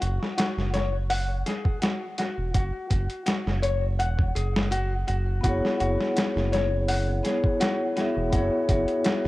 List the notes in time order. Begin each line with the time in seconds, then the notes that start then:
0.01 F#1 F#4, closed hi-hat
0.23 snare
0.38 F#4, snare, closed hi-hat
0.57 F#1, snare
0.74 C#5, snare, closed hi-hat
1.10 F#5, open hi-hat
1.46 G#4, snare, closed hi-hat
1.65 kick
1.82 F#4, snare, closed hi-hat
2.18 F#4, snare, closed hi-hat
2.38 E1
2.54 F#1 F#4, kick, closed hi-hat
2.90 F#1 F#4, kick, closed hi-hat
3.10 closed hi-hat
3.26 F#4, snare, closed hi-hat
3.47 F#1, snare
3.63 C#5, closed hi-hat
3.99 E1 F#5, closed hi-hat
4.19 kick
4.35 F#1 G#4, closed hi-hat
4.56 snare
4.71 F#4, closed hi-hat
5.07 F#1 F#4, closed hi-hat
5.41 F#1 B3 E4 F#4, kick, closed hi-hat
5.46 G#4 C#5
5.65 snare
5.80 F#1 F#4, closed hi-hat
6.00 snare
6.16 F#4, snare, closed hi-hat
6.36 F#1, snare
6.52 C#5, snare, closed hi-hat
6.88 F#5, open hi-hat
7.23 B3 E4 G#4 C#5, snare, closed hi-hat
7.44 kick
7.60 F#4, snare, closed hi-hat
7.96 B3 E4 F#4 G#4 E5, snare, closed hi-hat
8.17 E1
8.30 F#1 B3 E4 F#4, kick, closed hi-hat
8.35 G#4 C#5
8.69 F#1 F#4, kick, closed hi-hat
8.88 closed hi-hat
9.05 F#4, snare, closed hi-hat
9.25 F#1